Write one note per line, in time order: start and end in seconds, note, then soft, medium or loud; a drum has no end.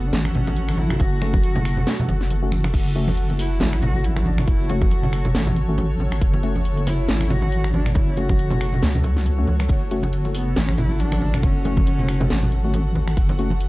0.00 0.11 F#1 loud
0.00 13.69 F#4 medium
0.00 13.69 A4 medium
0.00 2.72 F#5 medium
0.07 0.14 D4 medium
0.13 0.98 G#1 loud
0.13 0.80 C#4 loud
0.13 snare loud
0.13 closed hi-hat medium
0.13 muted conga soft
0.25 finger snap medium
0.25 high conga medium
0.35 closed hi-hat medium
0.35 low conga loud
0.47 muted conga medium
0.56 closed hi-hat medium
0.69 finger snap medium
0.69 muted conga medium
0.78 1.01 E4 loud
0.78 high conga medium
0.90 finger snap medium
0.90 closed hi-hat medium
0.90 low conga medium
1.00 1.85 F#1 loud
1.00 2.30 F#4 loud
1.00 kick loud
1.00 closed hi-hat medium
1.00 muted conga medium
1.22 1.39 A3 medium
1.22 1.39 C#4 medium
1.22 1.39 F#4 medium
1.22 finger snap medium
1.22 closed hi-hat medium
1.22 muted conga medium
1.33 kick loud
1.33 high conga medium
1.43 closed hi-hat medium
1.55 closed hi-hat soft
1.55 muted conga medium
1.55 low conga medium
1.65 finger snap medium
1.65 open hi-hat loud
1.77 muted conga medium
1.77 low conga medium
1.87 snare loud
1.87 closed hi-hat medium
2.00 high conga medium
2.00 low conga loud
2.09 2.72 F#1 loud
2.09 closed hi-hat medium
2.09 muted conga medium
2.21 snare soft
2.30 closed hi-hat medium
2.30 muted conga medium
2.43 2.52 A3 medium
2.43 2.52 C#4 medium
2.43 2.52 F#4 loud
2.52 finger snap medium
2.52 high conga medium
2.64 finger snap medium
2.64 closed hi-hat medium
2.64 muted conga medium
2.74 3.59 F#1 loud
2.74 9.68 C#5 medium
2.74 kick loud
2.74 closed hi-hat medium
2.74 crash medium
2.74 muted conga soft
2.96 3.07 A3 loud
2.96 3.07 C#4 medium
2.96 3.07 F#4 loud
2.96 closed hi-hat medium
3.08 muted conga medium
3.08 high conga loud
3.17 closed hi-hat medium
3.30 closed hi-hat soft
3.30 muted conga medium
3.39 3.84 E4 loud
3.39 open hi-hat loud
3.60 4.46 G#1 loud
3.60 snare loud
3.60 closed hi-hat medium
3.60 muted conga medium
3.73 finger snap medium
3.73 high conga medium
3.82 4.06 F#4 loud
3.82 closed hi-hat medium
3.82 muted conga medium
3.82 low conga loud
4.04 4.28 E4 loud
4.04 closed hi-hat medium
4.16 finger snap medium
4.16 muted conga medium
4.26 4.47 D4 loud
4.26 high conga medium
4.38 finger snap medium
4.38 closed hi-hat medium
4.38 muted conga medium
4.38 low conga medium
4.48 5.33 F#1 loud
4.48 4.71 E4 loud
4.48 kick loud
4.48 closed hi-hat medium
4.69 4.87 A3 medium
4.69 4.87 C#4 medium
4.69 4.87 F#4 medium
4.69 5.56 F#4 loud
4.69 closed hi-hat medium
4.69 muted conga medium
4.81 kick loud
4.81 high conga medium
4.91 closed hi-hat medium
4.91 muted conga medium
5.03 closed hi-hat soft
5.03 low conga medium
5.13 finger snap medium
5.13 open hi-hat loud
5.25 muted conga medium
5.25 low conga medium
5.35 6.20 G#1 loud
5.35 snare loud
5.35 closed hi-hat medium
5.46 muted conga medium
5.46 high conga medium
5.46 low conga loud
5.56 closed hi-hat medium
5.69 5.84 A3 medium
5.69 5.84 C#4 medium
5.69 5.84 F#4 medium
5.78 closed hi-hat medium
5.78 muted conga medium
6.00 muted conga medium
6.00 high conga medium
6.12 finger snap medium
6.12 closed hi-hat medium
6.21 7.07 F#1 loud
6.21 kick loud
6.21 closed hi-hat medium
6.34 muted conga medium
6.43 6.55 A3 loud
6.43 6.55 C#4 medium
6.43 6.55 F#4 loud
6.43 closed hi-hat medium
6.55 muted conga soft
6.55 high conga medium
6.65 closed hi-hat medium
6.77 closed hi-hat soft
6.87 7.32 E4 loud
6.87 open hi-hat medium
6.87 muted conga medium
7.08 7.94 G#1 loud
7.08 snare loud
7.08 closed hi-hat medium
7.08 muted conga medium
7.20 finger snap medium
7.20 high conga medium
7.30 7.73 F#4 loud
7.30 closed hi-hat medium
7.30 low conga loud
7.42 muted conga medium
7.52 closed hi-hat medium
7.64 finger snap medium
7.64 muted conga soft
7.74 7.94 D4 loud
7.74 high conga loud
7.86 finger snap medium
7.86 closed hi-hat medium
7.86 low conga medium
7.95 8.81 F#1 loud
7.95 8.19 E4 loud
7.95 kick loud
7.95 closed hi-hat medium
7.95 muted conga medium
8.17 8.34 A3 medium
8.17 8.34 C#4 medium
8.17 9.04 F#4 loud
8.17 8.34 F#4 medium
8.17 closed hi-hat medium
8.17 muted conga medium
8.29 kick loud
8.29 high conga medium
8.39 closed hi-hat medium
8.51 closed hi-hat soft
8.51 muted conga medium
8.51 low conga medium
8.61 finger snap medium
8.61 open hi-hat medium
8.73 muted conga soft
8.73 low conga medium
8.83 9.46 C#2 loud
8.83 snare loud
8.83 closed hi-hat medium
8.95 high conga medium
8.95 low conga medium
9.04 closed hi-hat medium
9.04 muted conga medium
9.17 snare soft
9.25 closed hi-hat medium
9.25 muted conga soft
9.38 9.47 A3 medium
9.38 9.47 C#4 medium
9.38 9.47 F#4 loud
9.47 9.68 C#2 loud
9.47 high conga medium
9.60 finger snap medium
9.60 closed hi-hat medium
9.60 muted conga medium
9.69 10.55 F#1 loud
9.69 13.69 F#5 medium
9.69 kick loud
9.69 closed hi-hat medium
9.69 ride medium
9.69 muted conga medium
9.91 10.03 A3 medium
9.91 10.03 C#4 medium
9.91 10.03 F#4 loud
9.91 closed hi-hat medium
10.03 muted conga medium
10.03 high conga medium
10.13 closed hi-hat medium
10.13 ride soft
10.25 closed hi-hat soft
10.25 muted conga soft
10.34 10.58 B3 loud
10.34 open hi-hat medium
10.56 11.42 G#1 loud
10.56 10.79 C#4 loud
10.56 snare loud
10.56 closed hi-hat medium
10.56 ride medium
10.56 muted conga medium
10.69 finger snap medium
10.69 high conga medium
10.78 11.01 E4 loud
10.78 closed hi-hat soft
10.78 muted conga soft
10.78 low conga medium
11.00 11.43 D4 loud
11.00 closed hi-hat medium
11.00 ride soft
11.12 finger snap medium
11.12 muted conga medium
11.22 high conga medium
11.34 finger snap medium
11.34 closed hi-hat medium
11.34 muted conga soft
11.34 low conga medium
11.43 12.29 F#1 loud
11.43 12.70 C#4 loud
11.43 kick loud
11.43 closed hi-hat medium
11.43 ride medium
11.65 11.82 A3 medium
11.65 11.82 C#4 medium
11.65 11.82 F#4 medium
11.65 closed hi-hat medium
11.65 muted conga medium
11.77 kick loud
11.77 high conga medium
11.87 closed hi-hat medium
11.87 ride soft
11.87 muted conga medium
11.99 closed hi-hat soft
11.99 low conga medium
12.09 finger snap medium
12.09 open hi-hat medium
12.20 muted conga medium
12.20 low conga loud
12.30 13.16 G#1 loud
12.30 snare loud
12.30 closed hi-hat medium
12.30 ride medium
12.43 muted conga medium
12.43 high conga medium
12.43 low conga medium
12.52 closed hi-hat soft
12.64 12.80 A3 medium
12.64 12.80 C#4 medium
12.64 12.80 F#4 medium
12.74 closed hi-hat medium
12.74 ride soft
12.74 muted conga medium
12.95 muted conga soft
12.95 high conga medium
13.08 finger snap medium
13.08 closed hi-hat medium
13.17 13.69 F#1 loud
13.17 kick loud
13.17 closed hi-hat medium
13.17 ride medium
13.29 muted conga medium
13.39 13.51 A3 loud
13.39 13.51 C#4 medium
13.39 13.51 F#4 loud
13.39 closed hi-hat medium
13.50 muted conga medium
13.50 high conga medium
13.61 closed hi-hat medium
13.61 ride medium